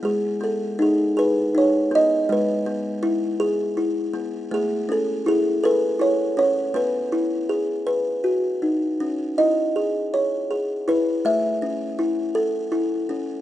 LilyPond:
\new Staff \with { instrumentName = "Kalimba" } { \time 6/8 \key gis \phrygian \tempo 4. = 54 << { gis'8 a'8 gis'8 b'8 cis''8 dis''8 | b'2~ b'8 r8 | gis'8 a'8 gis'8 b'8 cis''8 cis''8 | b'2~ b'8 r8 |
r8 dis''4 r4 b'8 | e''2 r4 | } \\ { gis8 b8 dis'8 gis'8 dis'8 b8 | gis8 b8 e'8 gis'8 e'8 b8 | a8 cis'8 e'8 a'8 e'8 cis'8 | b8 e'8 gis'8 b'8 fis'8 dis'8 |
cis'8 e'8 gis'8 cis''8 gis'8 e'8 | a8 cis'8 e'8 a'8 e'8 cis'8 | } >> }